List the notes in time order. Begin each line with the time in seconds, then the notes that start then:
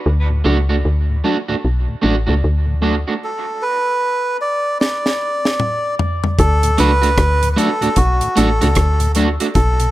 0.06 D2
0.30 D2 A2
0.44 C#2 F#3 A3 D4 F#4
0.69 A3 D4 F#4
0.85 D2
1.10 D2 A2
1.24 F#3 A3 D4 F#4
1.48 D2 A2 A3 D4 F#4
1.65 B1
1.88 D2 A2
2.02 A1 F#3 A3 D4 F#4
2.27 C#2 D2 A2 A3 D4 F#4
2.44 D2
2.66 D2 A2
2.81 F#3 A3 D4 F#4
3.08 A3 D4 F#4
3.24 A4
3.62 B4
4.41 D5
4.80 D5, snare
5.06 snare
5.45 snare
5.60 mid tom
5.99 floor tom
6.24 floor tom
6.39 D2 A4, kick, closed hi-hat
6.63 D2 A2, closed hi-hat
6.78 C#2 F#3 A3 D4 F#4 B4, closed hi-hat
7.02 A3 D4 F#4, closed hi-hat
7.18 D2, kick, cross-stick, closed hi-hat
7.42 D2 A2, closed hi-hat
7.53 F#3 A3 B4
7.57 D4 F#4 A4, closed hi-hat
7.81 D2 A2 A3 D4 F#4, closed hi-hat
7.96 B1 F#4, kick, closed hi-hat
8.21 D2 A2, closed hi-hat
8.36 A1 F#3 A3 D4 F#4 A4, closed hi-hat
8.60 C#2 D2 A2 A3 D4 F#4, closed hi-hat
8.75 D2, kick, cross-stick, closed hi-hat
9.00 D2 A2, closed hi-hat
9.15 F#3 A3 D4 F#4, closed hi-hat
9.40 A3 D4 F#4, closed hi-hat
9.55 B1 A4, kick, closed hi-hat
9.80 B2, closed hi-hat